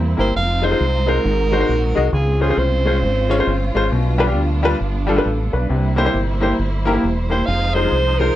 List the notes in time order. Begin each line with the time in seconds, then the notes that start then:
Already playing: E2 G3 A#3 C4 E4
0.17 G1 A#3 E4 G4 A#4 C5
0.34 F1 G#3 D#4 F4 F5
0.62 G#3 D#4 F4 C5
0.70 G#3 D#4 F4 C5
0.80 C2
1.07 G#3 D#4 F4 A#4 C5
1.24 G#1 G#2 F#4
1.51 G#3 D#4 F#4 C5
1.59 G#3 D#4 F#4 C5
1.69 A#1
1.95 C2 G#3 D#4 F#4 D#5
2.13 C#2 C#3 G#3 C4 C#4 F4 G#4
2.40 G#3 C#4 F4 G#4 C5
2.49 G#3 C#4 F4 C5
2.57 C2 C5
2.85 G#3 C#4 F4 C5
3.02 G#1
3.29 G#3 C#4 F4 C#5
3.38 G#3 C#4 F4 C5
3.47 G1
3.75 G#1 G#3 C#4 F4 C5
3.91 B1 B2 G3 B3 D4
4.18 G3 D4 F4 B4
4.27 G3 D4 F4 G4
4.36 D2
4.63 G3 D4 F4 B4
4.80 G1
5.07 G3 D4 F4 A4
5.16 G3 D4 F4 B4
5.25 A1 A4
5.53 B1 D4 B4
5.68 C2 C3 A#3 E4 C5
5.96 A#3 E4 G4 C5
6.04 A#3 E4 G4 C5
6.14 G1
6.41 A#3 E4 G4 C5
6.59 G1
6.85 A#3 E4 G4 A#4
6.93 A#3 E4 G4 A#4
7.03 E1
7.30 A#3 E4 G4 C5
7.46 F1 F3 G#3 D#4 F4 C5 F5
7.74 G#3 D#4 F4 C5
7.82 G#3 D#4 F4 G#4
7.92 C2
8.19 G#3 D#4 F4 A#4 C5